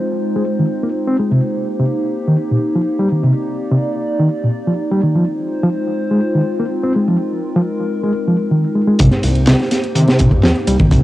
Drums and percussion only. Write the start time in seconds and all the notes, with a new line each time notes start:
8.99 kick, closed hi-hat
9.11 snare, closed hi-hat
9.23 closed hi-hat, ride
9.35 closed hi-hat
9.47 snare, clap, closed hi-hat
9.59 snare, closed hi-hat
9.71 snare, closed hi-hat, ride
9.84 closed hi-hat
9.95 closed hi-hat
10.08 snare, closed hi-hat
10.19 kick, closed hi-hat, ride
10.31 kick, closed hi-hat
10.43 snare, clap, closed hi-hat
10.55 closed hi-hat
10.67 closed hi-hat, ride
10.79 kick, closed hi-hat
10.91 kick, closed hi-hat